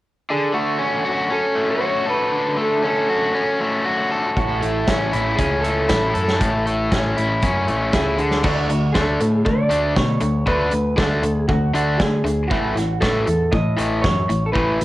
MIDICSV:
0, 0, Header, 1, 5, 480
1, 0, Start_track
1, 0, Tempo, 508906
1, 281, Time_signature, 4, 2, 24, 8
1, 14004, End_track
2, 0, Start_track
2, 0, Title_t, "Clean electric guitar"
2, 0, Program_c, 0, 27
2, 293, Note_on_c, 0, 68, 80
2, 507, Note_off_c, 0, 68, 0
2, 511, Note_on_c, 0, 66, 71
2, 1243, Note_off_c, 0, 66, 0
2, 1247, Note_on_c, 0, 69, 79
2, 1607, Note_off_c, 0, 69, 0
2, 1611, Note_on_c, 0, 73, 79
2, 1941, Note_off_c, 0, 73, 0
2, 1976, Note_on_c, 0, 71, 77
2, 2416, Note_off_c, 0, 71, 0
2, 2470, Note_on_c, 0, 69, 75
2, 2694, Note_off_c, 0, 69, 0
2, 2706, Note_on_c, 0, 69, 74
2, 3376, Note_off_c, 0, 69, 0
2, 4122, Note_on_c, 0, 66, 82
2, 4356, Note_on_c, 0, 64, 74
2, 4370, Note_off_c, 0, 66, 0
2, 5053, Note_on_c, 0, 68, 87
2, 5102, Note_off_c, 0, 64, 0
2, 5288, Note_off_c, 0, 68, 0
2, 5292, Note_on_c, 0, 69, 75
2, 7431, Note_off_c, 0, 69, 0
2, 7487, Note_on_c, 0, 68, 82
2, 7957, Note_off_c, 0, 68, 0
2, 7961, Note_on_c, 0, 66, 79
2, 8415, Note_off_c, 0, 66, 0
2, 8418, Note_on_c, 0, 69, 85
2, 8796, Note_off_c, 0, 69, 0
2, 8796, Note_on_c, 0, 68, 85
2, 8909, Note_off_c, 0, 68, 0
2, 8913, Note_on_c, 0, 74, 76
2, 9386, Note_off_c, 0, 74, 0
2, 9390, Note_on_c, 0, 73, 76
2, 9875, Note_off_c, 0, 73, 0
2, 9879, Note_on_c, 0, 71, 95
2, 10345, Note_on_c, 0, 69, 86
2, 10377, Note_off_c, 0, 71, 0
2, 10823, Note_off_c, 0, 69, 0
2, 10827, Note_on_c, 0, 66, 83
2, 11065, Note_off_c, 0, 66, 0
2, 11076, Note_on_c, 0, 66, 79
2, 11304, Note_off_c, 0, 66, 0
2, 11307, Note_on_c, 0, 68, 81
2, 11765, Note_off_c, 0, 68, 0
2, 11769, Note_on_c, 0, 66, 79
2, 12262, Note_off_c, 0, 66, 0
2, 12266, Note_on_c, 0, 69, 93
2, 12748, Note_on_c, 0, 75, 85
2, 12770, Note_off_c, 0, 69, 0
2, 13218, Note_off_c, 0, 75, 0
2, 13221, Note_on_c, 0, 73, 88
2, 13635, Note_off_c, 0, 73, 0
2, 13639, Note_on_c, 0, 69, 79
2, 13692, Note_off_c, 0, 69, 0
2, 13696, Note_on_c, 0, 71, 87
2, 14004, Note_off_c, 0, 71, 0
2, 14004, End_track
3, 0, Start_track
3, 0, Title_t, "Overdriven electric guitar"
3, 0, Program_c, 1, 29
3, 284, Note_on_c, 1, 50, 50
3, 505, Note_on_c, 1, 57, 49
3, 740, Note_on_c, 1, 61, 54
3, 986, Note_on_c, 1, 66, 53
3, 1226, Note_off_c, 1, 61, 0
3, 1230, Note_on_c, 1, 61, 64
3, 1459, Note_off_c, 1, 57, 0
3, 1462, Note_on_c, 1, 57, 56
3, 1483, Note_off_c, 1, 50, 0
3, 1696, Note_off_c, 1, 66, 0
3, 1707, Note_on_c, 1, 66, 57
3, 1945, Note_on_c, 1, 69, 57
3, 2187, Note_on_c, 1, 50, 58
3, 2422, Note_off_c, 1, 57, 0
3, 2426, Note_on_c, 1, 57, 57
3, 2662, Note_off_c, 1, 61, 0
3, 2666, Note_on_c, 1, 61, 54
3, 2908, Note_off_c, 1, 66, 0
3, 2919, Note_on_c, 1, 66, 57
3, 3156, Note_off_c, 1, 61, 0
3, 3160, Note_on_c, 1, 61, 64
3, 3395, Note_off_c, 1, 50, 0
3, 3399, Note_off_c, 1, 57, 0
3, 3403, Note_on_c, 1, 57, 60
3, 3623, Note_off_c, 1, 66, 0
3, 3634, Note_on_c, 1, 66, 59
3, 3879, Note_off_c, 1, 69, 0
3, 3882, Note_on_c, 1, 69, 63
3, 4114, Note_on_c, 1, 45, 63
3, 4119, Note_off_c, 1, 66, 0
3, 4352, Note_off_c, 1, 57, 0
3, 4356, Note_on_c, 1, 57, 51
3, 4606, Note_off_c, 1, 61, 0
3, 4610, Note_on_c, 1, 61, 53
3, 4838, Note_on_c, 1, 64, 58
3, 5082, Note_off_c, 1, 61, 0
3, 5086, Note_on_c, 1, 61, 67
3, 5319, Note_off_c, 1, 45, 0
3, 5319, Note_off_c, 1, 57, 0
3, 5322, Note_on_c, 1, 57, 58
3, 5542, Note_off_c, 1, 64, 0
3, 5553, Note_on_c, 1, 64, 66
3, 5788, Note_off_c, 1, 69, 0
3, 5792, Note_on_c, 1, 69, 62
3, 6036, Note_on_c, 1, 45, 60
3, 6274, Note_off_c, 1, 57, 0
3, 6285, Note_off_c, 1, 61, 0
3, 6285, Note_on_c, 1, 57, 56
3, 6521, Note_on_c, 1, 61, 54
3, 6750, Note_off_c, 1, 64, 0
3, 6762, Note_on_c, 1, 64, 67
3, 6997, Note_off_c, 1, 61, 0
3, 6999, Note_off_c, 1, 69, 0
3, 7008, Note_on_c, 1, 61, 71
3, 7230, Note_off_c, 1, 57, 0
3, 7241, Note_off_c, 1, 45, 0
3, 7241, Note_on_c, 1, 57, 56
3, 7470, Note_off_c, 1, 64, 0
3, 7482, Note_on_c, 1, 64, 67
3, 7716, Note_on_c, 1, 50, 56
3, 7723, Note_off_c, 1, 57, 0
3, 7723, Note_off_c, 1, 64, 0
3, 7727, Note_off_c, 1, 61, 0
3, 7944, Note_off_c, 1, 50, 0
3, 7956, Note_on_c, 1, 50, 75
3, 7968, Note_on_c, 1, 62, 72
3, 7969, Note_on_c, 1, 57, 90
3, 8186, Note_off_c, 1, 50, 0
3, 8192, Note_off_c, 1, 57, 0
3, 8192, Note_off_c, 1, 62, 0
3, 8207, Note_on_c, 1, 50, 59
3, 8210, Note_on_c, 1, 57, 60
3, 8422, Note_off_c, 1, 50, 0
3, 8423, Note_off_c, 1, 57, 0
3, 8436, Note_on_c, 1, 50, 69
3, 8447, Note_on_c, 1, 57, 71
3, 8450, Note_on_c, 1, 62, 68
3, 8666, Note_off_c, 1, 50, 0
3, 8672, Note_off_c, 1, 57, 0
3, 8673, Note_off_c, 1, 62, 0
3, 8683, Note_on_c, 1, 50, 57
3, 8683, Note_on_c, 1, 57, 68
3, 8900, Note_off_c, 1, 50, 0
3, 8900, Note_off_c, 1, 57, 0
3, 8914, Note_on_c, 1, 50, 63
3, 8919, Note_on_c, 1, 57, 76
3, 9131, Note_off_c, 1, 50, 0
3, 9138, Note_off_c, 1, 57, 0
3, 9142, Note_on_c, 1, 50, 73
3, 9149, Note_on_c, 1, 57, 76
3, 9155, Note_on_c, 1, 62, 86
3, 9379, Note_off_c, 1, 50, 0
3, 9383, Note_off_c, 1, 57, 0
3, 9386, Note_off_c, 1, 62, 0
3, 9393, Note_on_c, 1, 50, 69
3, 9399, Note_on_c, 1, 57, 68
3, 9615, Note_off_c, 1, 50, 0
3, 9618, Note_off_c, 1, 57, 0
3, 9628, Note_on_c, 1, 50, 56
3, 9631, Note_on_c, 1, 57, 70
3, 9852, Note_off_c, 1, 50, 0
3, 9854, Note_off_c, 1, 57, 0
3, 9868, Note_on_c, 1, 50, 68
3, 9870, Note_on_c, 1, 57, 71
3, 9876, Note_on_c, 1, 62, 71
3, 10091, Note_off_c, 1, 50, 0
3, 10096, Note_off_c, 1, 57, 0
3, 10102, Note_on_c, 1, 50, 58
3, 10106, Note_off_c, 1, 62, 0
3, 10108, Note_on_c, 1, 57, 62
3, 10330, Note_off_c, 1, 50, 0
3, 10332, Note_off_c, 1, 57, 0
3, 10340, Note_on_c, 1, 50, 73
3, 10353, Note_on_c, 1, 57, 74
3, 10356, Note_on_c, 1, 62, 77
3, 10578, Note_off_c, 1, 50, 0
3, 10585, Note_off_c, 1, 57, 0
3, 10586, Note_off_c, 1, 62, 0
3, 10593, Note_on_c, 1, 50, 59
3, 10599, Note_on_c, 1, 57, 61
3, 10815, Note_off_c, 1, 50, 0
3, 10818, Note_off_c, 1, 57, 0
3, 10838, Note_on_c, 1, 50, 67
3, 10838, Note_on_c, 1, 57, 70
3, 11058, Note_off_c, 1, 50, 0
3, 11058, Note_off_c, 1, 57, 0
3, 11070, Note_on_c, 1, 50, 81
3, 11074, Note_on_c, 1, 57, 83
3, 11084, Note_on_c, 1, 62, 91
3, 11303, Note_off_c, 1, 50, 0
3, 11305, Note_off_c, 1, 57, 0
3, 11310, Note_off_c, 1, 62, 0
3, 11316, Note_on_c, 1, 57, 78
3, 11317, Note_on_c, 1, 50, 67
3, 11537, Note_off_c, 1, 50, 0
3, 11537, Note_off_c, 1, 57, 0
3, 11547, Note_on_c, 1, 50, 65
3, 11553, Note_on_c, 1, 57, 64
3, 11772, Note_off_c, 1, 50, 0
3, 11775, Note_off_c, 1, 57, 0
3, 11796, Note_on_c, 1, 45, 77
3, 11800, Note_on_c, 1, 52, 77
3, 11801, Note_on_c, 1, 57, 83
3, 12021, Note_off_c, 1, 45, 0
3, 12028, Note_off_c, 1, 52, 0
3, 12029, Note_off_c, 1, 57, 0
3, 12032, Note_on_c, 1, 45, 61
3, 12044, Note_on_c, 1, 52, 60
3, 12255, Note_off_c, 1, 45, 0
3, 12260, Note_off_c, 1, 52, 0
3, 12271, Note_on_c, 1, 45, 70
3, 12281, Note_on_c, 1, 52, 82
3, 12281, Note_on_c, 1, 57, 84
3, 12495, Note_off_c, 1, 45, 0
3, 12506, Note_off_c, 1, 52, 0
3, 12507, Note_on_c, 1, 45, 64
3, 12509, Note_off_c, 1, 57, 0
3, 12517, Note_on_c, 1, 52, 74
3, 12732, Note_off_c, 1, 45, 0
3, 12737, Note_off_c, 1, 52, 0
3, 12755, Note_on_c, 1, 45, 68
3, 12757, Note_on_c, 1, 52, 71
3, 12973, Note_off_c, 1, 45, 0
3, 12977, Note_off_c, 1, 52, 0
3, 12984, Note_on_c, 1, 45, 85
3, 12990, Note_on_c, 1, 52, 84
3, 13002, Note_on_c, 1, 57, 85
3, 13220, Note_off_c, 1, 45, 0
3, 13223, Note_off_c, 1, 52, 0
3, 13229, Note_off_c, 1, 57, 0
3, 13239, Note_on_c, 1, 45, 71
3, 13244, Note_on_c, 1, 52, 73
3, 13458, Note_off_c, 1, 45, 0
3, 13460, Note_off_c, 1, 52, 0
3, 13480, Note_on_c, 1, 45, 54
3, 13482, Note_on_c, 1, 52, 58
3, 13699, Note_off_c, 1, 45, 0
3, 13699, Note_off_c, 1, 52, 0
3, 13708, Note_on_c, 1, 45, 72
3, 13720, Note_on_c, 1, 52, 81
3, 13720, Note_on_c, 1, 57, 84
3, 13942, Note_off_c, 1, 45, 0
3, 13948, Note_off_c, 1, 52, 0
3, 13948, Note_off_c, 1, 57, 0
3, 13973, Note_on_c, 1, 52, 59
3, 13974, Note_on_c, 1, 45, 61
3, 14004, Note_off_c, 1, 45, 0
3, 14004, Note_off_c, 1, 52, 0
3, 14004, End_track
4, 0, Start_track
4, 0, Title_t, "Picked electric bass"
4, 0, Program_c, 2, 34
4, 4116, Note_on_c, 2, 33, 76
4, 4352, Note_off_c, 2, 33, 0
4, 4368, Note_on_c, 2, 33, 75
4, 4592, Note_off_c, 2, 33, 0
4, 4597, Note_on_c, 2, 33, 70
4, 4833, Note_off_c, 2, 33, 0
4, 4850, Note_on_c, 2, 33, 80
4, 5075, Note_off_c, 2, 33, 0
4, 5081, Note_on_c, 2, 37, 77
4, 5548, Note_off_c, 2, 37, 0
4, 5564, Note_on_c, 2, 33, 82
4, 5797, Note_off_c, 2, 33, 0
4, 5808, Note_on_c, 2, 42, 73
4, 6039, Note_off_c, 2, 42, 0
4, 6043, Note_on_c, 2, 33, 80
4, 6509, Note_off_c, 2, 33, 0
4, 6525, Note_on_c, 2, 33, 73
4, 6758, Note_off_c, 2, 33, 0
4, 6772, Note_on_c, 2, 33, 71
4, 7001, Note_off_c, 2, 33, 0
4, 7008, Note_on_c, 2, 42, 78
4, 7239, Note_off_c, 2, 42, 0
4, 7252, Note_on_c, 2, 33, 75
4, 7478, Note_off_c, 2, 33, 0
4, 7484, Note_on_c, 2, 37, 80
4, 7714, Note_off_c, 2, 37, 0
4, 7720, Note_on_c, 2, 38, 70
4, 7955, Note_off_c, 2, 38, 0
4, 7962, Note_on_c, 2, 38, 83
4, 8170, Note_off_c, 2, 38, 0
4, 8194, Note_on_c, 2, 38, 72
4, 8405, Note_off_c, 2, 38, 0
4, 8447, Note_on_c, 2, 38, 72
4, 8653, Note_off_c, 2, 38, 0
4, 8689, Note_on_c, 2, 45, 85
4, 8894, Note_off_c, 2, 45, 0
4, 8919, Note_on_c, 2, 50, 81
4, 9128, Note_off_c, 2, 50, 0
4, 9156, Note_on_c, 2, 38, 75
4, 9367, Note_off_c, 2, 38, 0
4, 9395, Note_on_c, 2, 47, 81
4, 9606, Note_off_c, 2, 47, 0
4, 9634, Note_on_c, 2, 38, 76
4, 9846, Note_off_c, 2, 38, 0
4, 9874, Note_on_c, 2, 38, 82
4, 10086, Note_off_c, 2, 38, 0
4, 10119, Note_on_c, 2, 38, 73
4, 10328, Note_off_c, 2, 38, 0
4, 10355, Note_on_c, 2, 38, 68
4, 10566, Note_off_c, 2, 38, 0
4, 10586, Note_on_c, 2, 38, 83
4, 10801, Note_off_c, 2, 38, 0
4, 10835, Note_on_c, 2, 38, 79
4, 11046, Note_off_c, 2, 38, 0
4, 11073, Note_on_c, 2, 38, 77
4, 11285, Note_off_c, 2, 38, 0
4, 11315, Note_on_c, 2, 50, 75
4, 11526, Note_off_c, 2, 50, 0
4, 11541, Note_on_c, 2, 38, 73
4, 11793, Note_off_c, 2, 38, 0
4, 11793, Note_on_c, 2, 33, 86
4, 12005, Note_off_c, 2, 33, 0
4, 12030, Note_on_c, 2, 33, 77
4, 12243, Note_off_c, 2, 33, 0
4, 12280, Note_on_c, 2, 33, 82
4, 12489, Note_off_c, 2, 33, 0
4, 12524, Note_on_c, 2, 40, 78
4, 12731, Note_off_c, 2, 40, 0
4, 12756, Note_on_c, 2, 45, 80
4, 12967, Note_off_c, 2, 45, 0
4, 13003, Note_on_c, 2, 33, 73
4, 13210, Note_off_c, 2, 33, 0
4, 13242, Note_on_c, 2, 42, 83
4, 13450, Note_off_c, 2, 42, 0
4, 13479, Note_on_c, 2, 33, 76
4, 13688, Note_off_c, 2, 33, 0
4, 13723, Note_on_c, 2, 33, 75
4, 13931, Note_off_c, 2, 33, 0
4, 13962, Note_on_c, 2, 33, 77
4, 14004, Note_off_c, 2, 33, 0
4, 14004, End_track
5, 0, Start_track
5, 0, Title_t, "Drums"
5, 4120, Note_on_c, 9, 36, 94
5, 4122, Note_on_c, 9, 42, 65
5, 4214, Note_off_c, 9, 36, 0
5, 4216, Note_off_c, 9, 42, 0
5, 4361, Note_on_c, 9, 42, 53
5, 4455, Note_off_c, 9, 42, 0
5, 4596, Note_on_c, 9, 42, 76
5, 4600, Note_on_c, 9, 36, 94
5, 4600, Note_on_c, 9, 38, 87
5, 4690, Note_off_c, 9, 42, 0
5, 4694, Note_off_c, 9, 38, 0
5, 4695, Note_off_c, 9, 36, 0
5, 4840, Note_on_c, 9, 42, 52
5, 4935, Note_off_c, 9, 42, 0
5, 5079, Note_on_c, 9, 42, 78
5, 5081, Note_on_c, 9, 36, 93
5, 5174, Note_off_c, 9, 42, 0
5, 5176, Note_off_c, 9, 36, 0
5, 5324, Note_on_c, 9, 42, 56
5, 5418, Note_off_c, 9, 42, 0
5, 5556, Note_on_c, 9, 42, 86
5, 5560, Note_on_c, 9, 38, 104
5, 5562, Note_on_c, 9, 36, 102
5, 5650, Note_off_c, 9, 42, 0
5, 5654, Note_off_c, 9, 38, 0
5, 5656, Note_off_c, 9, 36, 0
5, 5799, Note_on_c, 9, 42, 52
5, 5893, Note_off_c, 9, 42, 0
5, 5925, Note_on_c, 9, 38, 62
5, 6020, Note_off_c, 9, 38, 0
5, 6042, Note_on_c, 9, 42, 76
5, 6045, Note_on_c, 9, 36, 86
5, 6136, Note_off_c, 9, 42, 0
5, 6139, Note_off_c, 9, 36, 0
5, 6290, Note_on_c, 9, 42, 51
5, 6384, Note_off_c, 9, 42, 0
5, 6526, Note_on_c, 9, 36, 92
5, 6527, Note_on_c, 9, 42, 69
5, 6531, Note_on_c, 9, 38, 85
5, 6620, Note_off_c, 9, 36, 0
5, 6621, Note_off_c, 9, 42, 0
5, 6625, Note_off_c, 9, 38, 0
5, 6769, Note_on_c, 9, 42, 53
5, 6864, Note_off_c, 9, 42, 0
5, 7000, Note_on_c, 9, 42, 71
5, 7005, Note_on_c, 9, 36, 107
5, 7094, Note_off_c, 9, 42, 0
5, 7099, Note_off_c, 9, 36, 0
5, 7243, Note_on_c, 9, 42, 51
5, 7337, Note_off_c, 9, 42, 0
5, 7478, Note_on_c, 9, 42, 73
5, 7481, Note_on_c, 9, 38, 94
5, 7482, Note_on_c, 9, 36, 103
5, 7572, Note_off_c, 9, 42, 0
5, 7576, Note_off_c, 9, 38, 0
5, 7577, Note_off_c, 9, 36, 0
5, 7719, Note_on_c, 9, 42, 48
5, 7814, Note_off_c, 9, 42, 0
5, 7839, Note_on_c, 9, 38, 63
5, 7933, Note_off_c, 9, 38, 0
5, 7958, Note_on_c, 9, 49, 76
5, 7962, Note_on_c, 9, 36, 93
5, 8052, Note_off_c, 9, 49, 0
5, 8057, Note_off_c, 9, 36, 0
5, 8201, Note_on_c, 9, 42, 77
5, 8296, Note_off_c, 9, 42, 0
5, 8440, Note_on_c, 9, 38, 85
5, 8444, Note_on_c, 9, 36, 91
5, 8534, Note_off_c, 9, 38, 0
5, 8538, Note_off_c, 9, 36, 0
5, 8681, Note_on_c, 9, 42, 81
5, 8775, Note_off_c, 9, 42, 0
5, 8923, Note_on_c, 9, 36, 98
5, 9018, Note_off_c, 9, 36, 0
5, 9153, Note_on_c, 9, 42, 82
5, 9248, Note_off_c, 9, 42, 0
5, 9397, Note_on_c, 9, 36, 100
5, 9398, Note_on_c, 9, 38, 102
5, 9491, Note_off_c, 9, 36, 0
5, 9492, Note_off_c, 9, 38, 0
5, 9623, Note_on_c, 9, 42, 71
5, 9717, Note_off_c, 9, 42, 0
5, 9873, Note_on_c, 9, 36, 90
5, 9967, Note_off_c, 9, 36, 0
5, 10105, Note_on_c, 9, 42, 77
5, 10199, Note_off_c, 9, 42, 0
5, 10356, Note_on_c, 9, 36, 97
5, 10358, Note_on_c, 9, 38, 93
5, 10451, Note_off_c, 9, 36, 0
5, 10453, Note_off_c, 9, 38, 0
5, 10594, Note_on_c, 9, 42, 80
5, 10688, Note_off_c, 9, 42, 0
5, 10835, Note_on_c, 9, 36, 101
5, 10930, Note_off_c, 9, 36, 0
5, 11081, Note_on_c, 9, 42, 69
5, 11175, Note_off_c, 9, 42, 0
5, 11317, Note_on_c, 9, 36, 99
5, 11317, Note_on_c, 9, 38, 100
5, 11412, Note_off_c, 9, 36, 0
5, 11412, Note_off_c, 9, 38, 0
5, 11566, Note_on_c, 9, 42, 73
5, 11661, Note_off_c, 9, 42, 0
5, 11798, Note_on_c, 9, 36, 96
5, 11893, Note_off_c, 9, 36, 0
5, 12045, Note_on_c, 9, 42, 72
5, 12048, Note_on_c, 9, 38, 30
5, 12139, Note_off_c, 9, 42, 0
5, 12143, Note_off_c, 9, 38, 0
5, 12280, Note_on_c, 9, 36, 95
5, 12285, Note_on_c, 9, 38, 85
5, 12374, Note_off_c, 9, 36, 0
5, 12379, Note_off_c, 9, 38, 0
5, 12517, Note_on_c, 9, 42, 71
5, 12612, Note_off_c, 9, 42, 0
5, 12758, Note_on_c, 9, 36, 97
5, 12852, Note_off_c, 9, 36, 0
5, 12999, Note_on_c, 9, 42, 80
5, 13093, Note_off_c, 9, 42, 0
5, 13243, Note_on_c, 9, 36, 107
5, 13246, Note_on_c, 9, 38, 97
5, 13337, Note_off_c, 9, 36, 0
5, 13340, Note_off_c, 9, 38, 0
5, 13485, Note_on_c, 9, 42, 73
5, 13579, Note_off_c, 9, 42, 0
5, 13727, Note_on_c, 9, 36, 89
5, 13821, Note_off_c, 9, 36, 0
5, 13968, Note_on_c, 9, 42, 81
5, 14004, Note_off_c, 9, 42, 0
5, 14004, End_track
0, 0, End_of_file